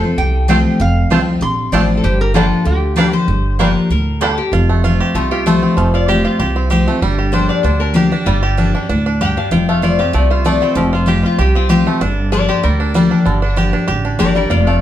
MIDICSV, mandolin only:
0, 0, Header, 1, 2, 480
1, 0, Start_track
1, 0, Key_signature, -2, "minor"
1, 0, Tempo, 311526
1, 1230, Time_signature, 4, 2, 24, 8
1, 22824, End_track
2, 0, Start_track
2, 0, Title_t, "Mandolin"
2, 0, Program_c, 0, 25
2, 748, Note_on_c, 0, 60, 82
2, 756, Note_on_c, 0, 65, 82
2, 764, Note_on_c, 0, 72, 83
2, 767, Note_on_c, 0, 81, 95
2, 896, Note_off_c, 0, 60, 0
2, 900, Note_off_c, 0, 65, 0
2, 904, Note_off_c, 0, 72, 0
2, 905, Note_off_c, 0, 81, 0
2, 1704, Note_on_c, 0, 60, 81
2, 1710, Note_on_c, 0, 65, 94
2, 1720, Note_on_c, 0, 72, 84
2, 1723, Note_on_c, 0, 81, 97
2, 1853, Note_off_c, 0, 60, 0
2, 1855, Note_off_c, 0, 65, 0
2, 1861, Note_off_c, 0, 72, 0
2, 1862, Note_off_c, 0, 81, 0
2, 2662, Note_on_c, 0, 60, 80
2, 2668, Note_on_c, 0, 65, 90
2, 2672, Note_on_c, 0, 72, 92
2, 2682, Note_on_c, 0, 81, 104
2, 2810, Note_off_c, 0, 60, 0
2, 2813, Note_off_c, 0, 65, 0
2, 2816, Note_off_c, 0, 72, 0
2, 2820, Note_off_c, 0, 81, 0
2, 3619, Note_on_c, 0, 58, 91
2, 3629, Note_on_c, 0, 65, 85
2, 3633, Note_on_c, 0, 74, 95
2, 3639, Note_on_c, 0, 79, 94
2, 3768, Note_off_c, 0, 58, 0
2, 3773, Note_off_c, 0, 65, 0
2, 3775, Note_off_c, 0, 74, 0
2, 3778, Note_off_c, 0, 79, 0
2, 4569, Note_on_c, 0, 58, 79
2, 4572, Note_on_c, 0, 65, 99
2, 4581, Note_on_c, 0, 74, 103
2, 4584, Note_on_c, 0, 79, 94
2, 4721, Note_off_c, 0, 58, 0
2, 4723, Note_off_c, 0, 65, 0
2, 4727, Note_off_c, 0, 74, 0
2, 4729, Note_off_c, 0, 79, 0
2, 5530, Note_on_c, 0, 58, 84
2, 5535, Note_on_c, 0, 65, 85
2, 5544, Note_on_c, 0, 74, 83
2, 5546, Note_on_c, 0, 79, 91
2, 5681, Note_off_c, 0, 58, 0
2, 5683, Note_off_c, 0, 65, 0
2, 5688, Note_off_c, 0, 74, 0
2, 5688, Note_off_c, 0, 79, 0
2, 6482, Note_on_c, 0, 58, 83
2, 6490, Note_on_c, 0, 65, 87
2, 6496, Note_on_c, 0, 74, 90
2, 6498, Note_on_c, 0, 79, 99
2, 6635, Note_off_c, 0, 58, 0
2, 6640, Note_off_c, 0, 65, 0
2, 6642, Note_off_c, 0, 74, 0
2, 6643, Note_off_c, 0, 79, 0
2, 22824, End_track
0, 0, End_of_file